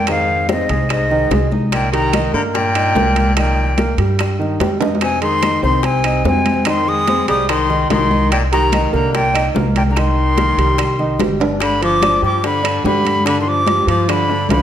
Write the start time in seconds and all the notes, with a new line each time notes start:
Already playing: F2
0.07 G#2 D#3 D#4 F5, high bongo, high timbale, claves
0.29 high conga
0.49 G#2 C4 C5 D#5, high bongo, high conga, high timbale, low timbale
0.69 C2 G#3 G#4, high bongo, high conga, high timbale
0.89 G#2 D#5, high bongo, high conga, high timbale, claves
1.10 D#3 D#4, high bongo, high conga
1.31 C2 G#3 G#4, high bongo, low bongo, high conga, high timbale, low timbale
1.52 D#4 D#5, high bongo, high conga
1.72 A#2 G5, high bongo, high conga, high timbale, claves
1.92 D#3 G3 G4 A#5, high conga, high timbale
2.13 D#4 D#5, high bongo, high conga, high timbale, low timbale, claves
2.33 G2 D3 A#3 A#4 A#5, high bongo, high conga
2.54 A#2 G5, high bongo, high conga, high timbale
2.75 D#4 D#5, high bongo, high conga, high timbale, claves
2.95 C2 A#3 A#4, high bongo, low bongo, high conga, low timbale
3.16 high bongo, high conga, high timbale
3.36 A#2 D#3 D#4 G5, high bongo, high conga, high timbale, claves
3.58 high conga
3.78 A#3 A#4, high bongo, high conga, high timbale, low timbale
3.98 G2 G3 G4, high bongo, high conga, high timbale
4.19 high bongo, high conga, high timbale, claves
4.39 D#3 D#4, high bongo, high conga
4.60 F2 G3 G4, high bongo, high conga, high timbale, low timbale
4.81 D#4 D#5, low bongo, high conga, high timbale
4.95 low timbale
5.01 C3 G#5, high bongo, high conga, high timbale, claves
5.22 D#3 G#3 G#4 C6, high conga, high timbale
5.43 D#4 D#5, high bongo, high conga, high timbale, low timbale, claves
5.63 C2 D#3 C4 C5 C6, high bongo, high conga
5.83 C3 G#5, high bongo, high conga, high timbale
6.04 D#4 D#5, high bongo, high conga, high timbale, claves
6.24 F2 C3 C4 C5 G#5, high bongo, low bongo, high conga, low timbale
6.46 high bongo, high conga, high timbale
6.65 D#3 D#4 C6, high bongo, high conga, high timbale, claves
6.87 G#3 D#6, high conga
7.07 C4 C5, high bongo, high conga, high timbale, low timbale
7.28 C2 G3 G#3 G#4 D#6, high bongo, high conga, high timbale
7.49 D#3 C6, high bongo, high conga, high timbale, claves
7.69 D#3 D#4, high bongo, high conga
7.90 C2 D#3 G#3 G#4 C6, high bongo, low bongo, high conga, high timbale, low timbale
8.11 D#4 D#5, high bongo, high conga
8.32 A#2 G5, high bongo, high timbale, claves
8.52 D#3 G3 G4 A#5, high conga, high timbale
8.72 D#4 D#5, high bongo, high conga, high timbale, low timbale, claves
8.93 C2 D3 A#3 A#4 A#5, high bongo, high conga
9.14 A#2 G5, high bongo, high conga, high timbale
9.34 D#4 D#5, high bongo, high conga, high timbale, claves
9.54 C2 A#3 A#4, high bongo, low bongo, high conga, low timbale
9.76 A#2 G5, high bongo, high conga, high timbale
9.89 D3 A#5
9.96 D#3 D#4 C6, high bongo, high conga, high timbale, claves
10.17 high conga
10.37 A#3 A#4, high bongo, high conga, high timbale, low timbale
10.57 C2 G3 G4, high bongo, high conga, high timbale
10.78 high bongo, high conga, high timbale, claves
10.99 D#3 D#4, high bongo, high conga
11.19 G1 G3 G4, high bongo, low bongo, high conga, high timbale, low timbale
11.40 D4 D5, high bongo, high conga, high timbale
11.61 D3 B5, high bongo, high conga, high timbale, claves
11.82 F3 F4 D6, high conga, high timbale
12.02 D4 D5, high bongo, high conga, high timbale, low timbale, claves
12.22 G2 F3 G3 G4 D6, high bongo, high conga
12.43 D3 B5, high bongo, high conga, high timbale
12.63 D4 D5, high bongo, high conga, high timbale, claves
12.84 G2 D3 G3 G4 B5, high bongo, low bongo, high conga, low timbale
13.05 high bongo, high conga, high timbale
13.25 D3 D4 B5, high bongo, high conga, high timbale, claves
13.40 D#3 C6
13.46 F3 D6, high conga
13.67 G3 G4, high bongo, high conga, high timbale, low timbale
13.87 G2 F3 F4 D6, high bongo, high conga, high timbale
14.08 D3 B5, high bongo, high conga, high timbale, claves
14.29 D3 D4, high bongo, high conga
14.49 C2 D3 F3 F4 B5, high bongo, low bongo, high conga, high timbale, low timbale